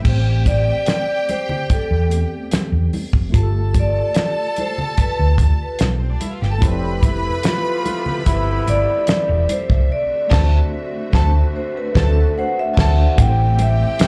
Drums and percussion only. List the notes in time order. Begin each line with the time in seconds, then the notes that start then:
0.05 kick, crash
0.46 kick, closed hi-hat, muted conga
0.86 snare, closed hi-hat, high conga
1.29 closed hi-hat, muted conga
1.49 low conga
1.70 kick, closed hi-hat, muted conga
2.11 closed hi-hat
2.51 snare, closed hi-hat, high conga
2.93 open hi-hat, high conga
3.13 kick
3.34 kick, closed hi-hat
3.74 kick, closed hi-hat, muted conga
4.14 snare, closed hi-hat, high conga
4.56 closed hi-hat, muted conga
4.78 low conga
4.97 kick, closed hi-hat
5.38 kick, closed hi-hat, low conga
5.79 snare, closed hi-hat, high conga
6.21 closed hi-hat, high conga
6.43 snare
6.62 kick, closed hi-hat
7.03 kick, closed hi-hat, muted conga
7.43 snare, closed hi-hat, high conga
7.86 closed hi-hat, muted conga
8.06 low conga
8.26 kick, closed hi-hat
8.68 closed hi-hat
9.07 snare, closed hi-hat, high conga
9.49 closed hi-hat, high conga
9.70 kick
10.31 kick, snare, crash
11.13 kick, snare
11.95 kick, snare
12.77 kick, snare, crash
13.18 kick, closed hi-hat
13.59 closed hi-hat, muted conga
13.99 snare, closed hi-hat, high conga